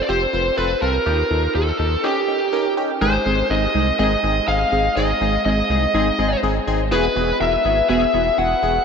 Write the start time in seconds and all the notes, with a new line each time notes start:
0.02 D5
0.09 F1 C4 F4 G4 C5
0.33 F1 C4 F4 B4
0.57 F1 C4 F4 A4 B4
0.82 C2 C4 F4 A4 A#4
1.06 D#2 D#4 F4 G4
1.30 D#2 D#4 F4 A4
1.55 D#2 D#4 F4 G4 A4
1.79 D#2 D#4 F4 A4
2.04 C#4 D#4 G4
2.28 C#4 D#4 G4
2.53 C#4 D#4 A#4
2.77 C#4 D#4 G4
3.01 G#1 G#3 C4 D#4 G#4 C5
3.26 G#1 G#3 C4 D#4 G#4
3.50 G#1 G#3 C4 D#4 G#4 D#5
3.75 C2 G#3 C4 D#4 G#4
3.99 G#1 G#3 C4 D#4 G#4 D#5
4.23 G#1 G#3 C4 D#4 G#4
4.48 G#1 G#3 C4 D#4 G#4 F5
4.72 G#1 G#3 C4 D#4 G#4
4.96 G#1 G#3 C4 D#4 G#4 D#5
5.21 G#1 G#3 C4 D#4 G#4
5.45 G#1 G#3 C4 D#4 G#4 D#5
5.70 C2 G#3 C4 D#4 G#4
5.94 G#1 G#3 C4 D#4 G#4
6.19 G#1 G#3 C4 D#4 G#4
6.43 G#1 G#3 C4 D#4 G#4
6.67 G#1 G#3 C4 D#4 G#4
6.92 E1 B3 E4 F#4 G#4 B4
7.16 E1 B3 E4 F#4 G#4
7.40 E1 B3 E4 F#4 A#4 E5
7.65 G#1 B3 E4 F#4 G#4
7.89 E1 B3 E4 F#4 G#4 E5
8.14 E1 B3 E4 F#4 G#4
8.38 E1 B3 E4 F#4 G#4 F#5
8.63 E1 B3 E4 F#4 G#4